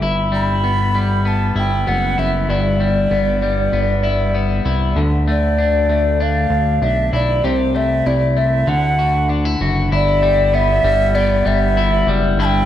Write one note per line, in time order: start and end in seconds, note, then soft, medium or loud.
0.00 1.52 G1 medium
0.00 0.02 E4 medium
0.00 1.55 E4 medium
0.32 0.94 G3 medium
0.32 1.29 B5 medium
0.64 1.24 B3 medium
0.95 2.79 G3 medium
1.25 1.86 B3 medium
1.25 1.57 A5 medium
1.55 1.85 G1 medium
1.55 2.17 E4 medium
1.55 1.90 G5 medium
1.87 2.16 F#1 medium
1.87 3.10 B3 medium
1.87 2.21 F#5 medium
2.18 2.47 F#1 medium
2.18 2.50 E4 medium
2.18 2.52 E5 medium
2.49 3.07 G1 loud
2.49 4.96 G2 medium
2.49 4.03 E4 medium
2.49 4.35 D5 medium
2.80 3.41 G3 medium
3.11 3.69 G1 medium
3.11 3.72 B3 medium
3.42 5.03 G3 medium
3.72 4.61 G1 loud
3.72 4.33 B3 medium
4.03 4.65 E4 medium
4.35 5.03 B3 medium
4.65 4.95 C2 medium
4.65 5.00 E4 medium
4.96 6.47 D2 loud
4.96 7.43 D3 medium
5.28 5.89 A3 medium
5.28 6.24 D5 medium
5.58 6.19 D4 medium
5.89 7.74 A3 medium
6.20 6.81 D4 medium
6.20 6.85 F5 medium
6.50 6.80 D2 loud
6.82 7.11 B1 medium
6.82 7.50 D4 medium
6.82 7.13 E5 medium
7.13 7.42 B1 medium
7.13 7.44 E4 medium
7.13 7.47 D5 medium
7.44 8.03 C2 medium
7.44 8.74 C3 medium
7.44 8.74 G4 medium
7.44 7.78 C5 medium
7.75 8.35 A3 soft
7.75 8.08 E5 medium
8.06 8.65 C2 medium
8.06 9.02 E4 medium
8.06 8.39 D5 medium
8.37 8.74 A3 soft
8.37 8.70 E5 medium
8.67 9.56 D2 medium
8.67 11.80 D3 medium
8.67 9.30 F#5 medium
8.99 9.60 F#4 medium
9.29 9.45 D4 medium
9.45 9.91 E4 soft
9.61 9.90 F#1 medium
9.61 9.92 F#4 medium
9.92 10.80 G1 loud
9.92 11.77 E4 medium
9.92 10.56 D5 medium
10.23 10.83 G3 medium
10.54 11.13 B3 medium
10.54 11.17 E5 loud
10.84 11.43 G1 medium
10.84 11.44 G3 medium
11.15 12.65 B3 medium
11.15 11.49 D5 loud
11.45 12.05 G1 loud
11.45 12.07 G3 medium
11.45 12.08 E5 medium
11.77 12.39 E4 medium
12.07 12.37 F#1 medium
12.07 12.65 G3 medium
12.37 12.65 G1 loud
12.37 12.65 G2 medium
12.37 12.65 E4 medium
12.37 12.46 A5 loud
12.45 12.65 G5 loud